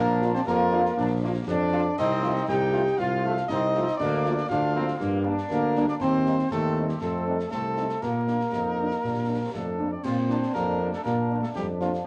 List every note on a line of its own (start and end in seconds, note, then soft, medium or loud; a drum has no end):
0.00 0.39 A#1 loud
0.00 0.31 A#3 loud
0.00 0.43 D4 loud
0.00 0.32 A#4 loud
0.21 0.31 F3 medium
0.21 0.31 D4 medium
0.21 0.31 F4 medium
0.21 snare medium
0.34 0.40 C4 loud
0.34 0.40 C5 loud
0.34 snare medium
0.46 0.89 F2 loud
0.46 1.19 A#3 loud
0.46 0.97 F4 loud
0.46 1.19 A#4 loud
0.46 concert bass drum medium
0.46 snare medium
0.72 0.81 F3 loud
0.72 0.81 D4 loud
0.72 0.81 F4 loud
0.85 snare medium
0.97 1.39 A#1 loud
0.97 1.08 D4 loud
0.97 concert bass drum loud
0.97 snare medium
1.23 1.32 F3 medium
1.23 1.46 A#3 loud
1.23 1.32 D4 medium
1.23 1.32 F4 medium
1.47 1.90 F2 loud
1.47 1.94 D4 loud
1.47 1.95 D4 loud
1.47 1.95 D5 loud
1.47 concert bass drum medium
1.47 snare medium
1.73 1.82 F3 loud
1.73 1.82 D4 loud
1.73 1.82 F4 loud
1.98 2.40 C2 loud
1.98 2.45 C4 loud
1.98 2.46 D#4 loud
1.98 2.45 D#5 loud
1.98 concert bass drum medium
1.98 snare medium
1.98 crash medium
2.22 2.31 F3 medium
2.22 2.32 A3 medium
2.22 2.32 F4 loud
2.22 snare medium
2.36 snare medium
2.48 2.90 C2 loud
2.48 2.95 D#4 loud
2.48 2.96 G4 loud
2.48 3.00 G5 loud
2.48 concert bass drum medium
2.48 snare medium
2.73 2.83 F3 loud
2.73 2.83 A3 loud
2.73 2.83 F4 loud
2.86 snare medium
2.98 3.41 C2 loud
2.98 3.23 F4 loud
2.98 3.46 F4 loud
2.98 3.47 F5 loud
2.98 concert bass drum medium
2.98 snare medium
3.24 3.34 F3 medium
3.24 3.35 A3 loud
3.24 3.33 A3 loud
3.24 3.34 F4 loud
3.37 snare medium
3.48 3.87 C2 loud
3.48 3.97 C4 loud
3.48 3.96 D#4 loud
3.48 3.95 D#5 loud
3.48 concert bass drum medium
3.48 snare medium
3.75 3.85 F3 loud
3.75 3.85 A3 loud
3.75 3.85 F4 medium
3.75 snare medium
3.87 snare medium
3.97 4.42 D2 loud
3.97 4.47 A#3 loud
3.97 4.47 D4 loud
3.97 4.45 D5 loud
3.97 concert bass drum medium
3.97 snare medium
3.97 crash soft
4.24 4.34 F3 medium
4.24 4.34 A#3 medium
4.24 4.34 F4 loud
4.24 snare medium
4.37 snare medium
4.49 4.92 D2 loud
4.49 4.74 D4 loud
4.49 5.21 F4 loud
4.49 5.21 F5 loud
4.49 concert bass drum medium
4.49 snare medium
4.74 4.84 F3 loud
4.74 4.84 A#3 loud
4.74 4.98 C4 loud
4.74 4.84 F4 loud
4.88 snare medium
4.98 5.42 G2 loud
4.98 5.25 A#3 loud
4.98 concert bass drum medium
4.98 snare medium
5.24 5.35 G3 medium
5.24 5.35 A#3 medium
5.24 6.00 D4 loud
5.24 5.35 D4 medium
5.38 snare medium
5.50 5.93 D2 loud
5.50 5.85 A#3 loud
5.50 5.86 A#4 loud
5.50 concert bass drum medium
5.50 snare medium
5.75 5.86 G3 medium
5.75 5.86 A#3 loud
5.75 5.85 D4 medium
5.75 snare medium
5.88 5.94 D4 loud
5.88 5.95 D5 loud
5.88 snare medium
6.00 6.43 D#2 loud
6.00 6.48 C4 loud
6.00 6.26 C4 loud
6.00 6.48 C5 loud
6.00 concert bass drum medium
6.00 snare medium
6.00 crash soft
6.26 6.36 G3 medium
6.26 6.37 A#3 medium
6.26 6.35 C4 medium
6.26 6.35 D#4 medium
6.26 snare medium
6.39 snare medium
6.51 6.93 D#2 loud
6.51 6.87 A3 loud
6.51 6.98 C4 loud
6.51 6.92 A4 loud
6.51 concert bass drum medium
6.51 snare medium
6.77 6.86 G3 medium
6.77 6.86 C4 medium
6.77 6.86 D#4 medium
6.89 6.94 G3 medium
6.89 7.00 G4 medium
6.89 snare medium
7.01 7.43 F2 loud
7.01 7.48 A3 loud
7.01 7.25 C4 loud
7.01 7.48 A4 loud
7.01 concert bass drum medium
7.01 snare medium
7.26 7.36 G3 medium
7.26 7.36 C4 medium
7.26 7.38 D4 medium
7.26 7.36 D#4 medium
7.39 snare medium
7.51 7.94 C2 loud
7.51 7.99 A3 loud
7.51 7.99 C4 medium
7.51 8.03 A4 loud
7.51 concert bass drum medium
7.51 snare medium
7.76 7.87 G3 medium
7.76 7.86 C4 medium
7.76 7.86 D#4 medium
7.76 snare medium
7.89 snare medium
8.01 8.44 A#2 loud
8.01 8.44 A#3 medium
8.01 9.50 A#3 loud
8.01 9.52 A#4 loud
8.01 concert bass drum medium
8.01 snare medium
8.01 crash soft
8.27 8.37 F3 medium
8.27 8.37 A#3 medium
8.27 8.37 D4 medium
8.27 snare medium
8.40 snare medium
8.50 8.95 F2 medium
8.50 8.98 D#4 loud
8.50 concert bass drum medium
8.50 snare medium
8.78 8.88 F3 medium
8.78 8.87 A#3 medium
8.78 8.87 D4 medium
8.91 snare medium
9.03 9.45 A#2 medium
9.03 9.41 D4 medium
9.03 concert bass drum medium
9.03 snare medium
9.29 9.38 F3 medium
9.29 9.38 A#3 medium
9.29 9.38 D4 medium
9.42 9.53 C4 medium
9.53 9.95 F2 medium
9.53 9.89 A3 medium
9.53 9.88 D4 medium
9.53 9.94 A4 loud
9.53 concert bass drum medium
9.53 snare medium
9.79 9.88 F3 medium
9.79 9.88 A#3 medium
9.79 9.88 D4 medium
9.91 10.05 C4 medium
9.91 10.03 D4 medium
9.91 10.05 D5 medium
10.03 10.46 A#2 loud
10.03 10.56 C4 loud
10.03 10.15 F4 loud
10.03 10.53 C5 loud
10.03 concert bass drum medium
10.03 snare medium
10.03 crash medium
10.28 10.38 F3 medium
10.28 10.38 A#3 medium
10.28 10.38 D4 medium
10.28 12.01 D4 loud
10.28 snare medium
10.42 snare medium
10.54 10.93 F2 loud
10.54 10.93 A#3 loud
10.54 10.89 A#4 loud
10.54 concert bass drum medium
10.54 snare medium
10.79 10.88 F3 medium
10.79 10.88 A#3 medium
10.79 10.89 D4 medium
10.92 11.04 A3 medium
10.92 11.03 A4 loud
10.92 snare medium
11.04 11.47 A#2 loud
11.04 11.40 A#3 loud
11.04 11.39 A#4 loud
11.04 concert bass drum medium
11.04 snare medium
11.30 11.39 F3 medium
11.30 11.39 A#3 medium
11.30 11.39 D4 medium
11.42 11.47 A3 loud
11.42 11.49 A4 loud
11.42 snare medium
11.55 11.97 F2 loud
11.55 11.67 G3 loud
11.55 11.67 G4 loud
11.55 concert bass drum medium
11.55 snare medium
11.80 12.07 F3 loud
11.80 11.90 F3 medium
11.80 11.90 A#3 medium
11.80 11.90 D4 medium
11.80 11.92 F4 loud
11.80 snare medium
11.94 snare medium